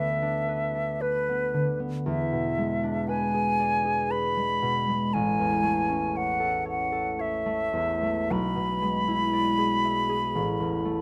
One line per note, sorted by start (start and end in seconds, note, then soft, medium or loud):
0.00 2.11 D2 soft
0.00 1.52 D3 soft
0.00 1.28 B3 soft
0.00 0.21 D4 soft
0.00 0.47 B4 soft
0.00 1.03 E5 soft
0.22 0.74 D4 soft
0.48 1.00 B4 soft
0.75 2.82 D4 soft
1.01 1.79 B4 soft
1.01 3.08 B4 soft
1.29 1.78 B3 soft
1.54 2.10 D3 soft
1.80 5.17 B3 soft
2.06 5.17 E2 soft
2.06 3.10 E5 soft
2.32 4.61 B2 soft
2.58 4.36 G#3 soft
2.83 5.17 D4 soft
3.08 4.09 B4 soft
3.08 4.13 G#5 medium
3.34 3.84 G#4 soft
3.60 5.18 D5 soft
3.85 5.18 G#4 soft
4.10 5.17 B4 soft
4.10 5.15 B5 medium
4.37 4.88 G#3 soft
4.62 5.18 B2 soft
4.89 5.18 G#3 soft
5.14 8.35 A1 soft
5.14 6.18 G#5 medium
5.39 7.72 E2 soft
5.63 7.45 A3 soft
5.89 8.34 C#4 soft
6.15 6.64 C#5 soft
6.15 6.68 F#5 medium
6.40 6.91 A4 soft
6.65 7.18 C#5 soft
6.65 7.22 F#5 medium
6.92 8.34 A4 soft
7.19 8.34 C#5 soft
7.19 8.33 E5 soft
7.46 8.01 A3 soft
7.73 8.34 E2 soft
8.03 8.35 A3 soft
8.30 10.39 B1 soft
8.30 11.02 B5 medium
8.56 10.38 B2 soft
8.81 10.38 G#3 soft
9.08 11.02 E4 soft
9.33 10.38 D5 soft
9.58 10.08 G#4 soft
9.84 11.02 E5 soft
10.09 10.39 G#4 soft
10.35 11.02 A1 soft
10.60 11.02 E2 soft
10.85 11.02 A3 soft